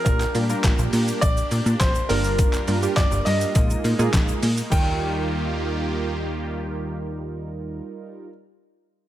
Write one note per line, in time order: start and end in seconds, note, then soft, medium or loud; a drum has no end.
0.05 0.25 A#1 loud
0.05 0.24 G3 medium
0.05 2.08 A#3 medium
0.05 0.24 A#3 medium
0.05 0.24 D4 medium
0.05 3.52 D4 medium
0.05 0.24 F4 medium
0.05 2.08 G4 loud
0.05 1.25 A#4 medium
0.05 0.24 A#4 medium
0.05 kick loud
0.05 closed hi-hat medium
0.05 shaker medium
0.20 clap medium
0.20 shaker medium
0.20 shaker soft
0.35 0.54 A#2 loud
0.35 0.44 G3 medium
0.35 0.44 A#3 medium
0.35 0.44 D4 medium
0.35 0.44 F4 medium
0.35 0.44 A#4 medium
0.35 open hi-hat medium
0.35 shaker medium
0.49 1.24 G3 medium
0.49 1.24 A#3 medium
0.49 1.24 D4 medium
0.49 1.24 F4 medium
0.49 1.24 A#4 medium
0.49 shaker medium
0.64 0.73 A#1 medium
0.64 kick loud
0.64 snare loud
0.64 clap loud
0.64 closed hi-hat medium
0.64 shaker medium
0.79 0.88 A#1 loud
0.79 shaker medium
0.93 1.12 A#2 loud
0.93 open hi-hat medium
0.93 shaker medium
1.08 shaker medium
1.21 1.41 A#1 loud
1.21 1.82 D5 loud
1.21 kick loud
1.21 closed hi-hat medium
1.21 shaker medium
1.37 shaker medium
1.51 1.61 A#2 loud
1.51 open hi-hat medium
1.51 shaker medium
1.66 1.75 A#2 medium
1.66 shaker medium
1.80 1.99 A#1 loud
1.80 2.10 C5 loud
1.80 kick loud
1.80 snare loud
1.80 clap loud
1.80 closed hi-hat medium
1.80 shaker medium
1.95 shaker medium
1.95 shaker soft
2.09 2.48 G1 loud
2.09 2.56 G3 medium
2.09 3.54 G3 medium
2.09 2.56 A#3 medium
2.09 2.56 D4 medium
2.09 3.54 F4 medium
2.09 2.56 F4 medium
2.09 2.99 A#4 medium
2.09 3.54 A#4 loud
2.09 2.56 A#4 medium
2.09 open hi-hat loud
2.09 shaker medium
2.24 shaker medium
2.24 shaker soft
2.39 kick loud
2.39 closed hi-hat medium
2.39 shaker medium
2.53 clap medium
2.53 shaker soft
2.53 shaker medium
2.68 2.87 G2 loud
2.68 2.77 G3 medium
2.68 2.77 A#3 medium
2.68 2.77 D4 medium
2.68 2.77 F4 medium
2.68 2.77 A#4 medium
2.68 open hi-hat medium
2.68 shaker medium
2.83 3.55 G3 medium
2.83 3.54 A#3 medium
2.83 3.55 D4 medium
2.83 3.54 F4 medium
2.83 3.56 G4 medium
2.83 shaker medium
2.96 3.06 G1 loud
2.96 3.27 D5 loud
2.96 kick loud
2.96 snare medium
2.96 clap loud
2.96 closed hi-hat medium
2.96 shaker medium
3.12 3.21 G1 loud
3.12 shaker medium
3.25 3.45 G2 loud
3.25 4.38 D#5 loud
3.25 open hi-hat medium
3.25 shaker medium
3.41 shaker medium
3.55 3.74 A#1 loud
3.55 3.90 G#3 medium
3.55 4.71 G#3 medium
3.55 3.90 A#3 medium
3.55 4.71 A#3 medium
3.55 4.71 D#4 medium
3.55 3.90 D#4 medium
3.55 3.90 F4 medium
3.55 3.90 A#4 medium
3.55 kick loud
3.55 closed hi-hat medium
3.55 shaker medium
3.70 shaker medium
3.84 3.94 A#2 loud
3.84 open hi-hat medium
3.84 shaker medium
3.99 4.09 A#2 loud
3.99 4.45 G#3 medium
3.99 4.45 A#3 medium
3.99 4.45 D#4 medium
3.99 4.45 F4 medium
3.99 4.45 G#4 loud
3.99 shaker medium
4.13 4.32 A#1 loud
4.13 kick loud
4.13 snare loud
4.13 clap loud
4.13 closed hi-hat medium
4.13 shaker medium
4.28 shaker soft
4.28 shaker medium
4.43 4.62 A#2 medium
4.43 open hi-hat loud
4.43 shaker medium
4.57 shaker medium
4.57 shaker soft
4.70 7.81 D#2 loud
4.70 7.81 D#3 medium
4.70 8.27 G3 medium
4.70 7.81 A#3 medium
4.70 8.28 D#4 medium
4.70 7.81 F4 medium
4.70 8.29 F4 medium
4.70 7.81 G4 medium
4.70 8.30 A#4 medium
4.70 8.28 G5 medium
4.70 kick loud
4.70 crash medium
4.70 shaker medium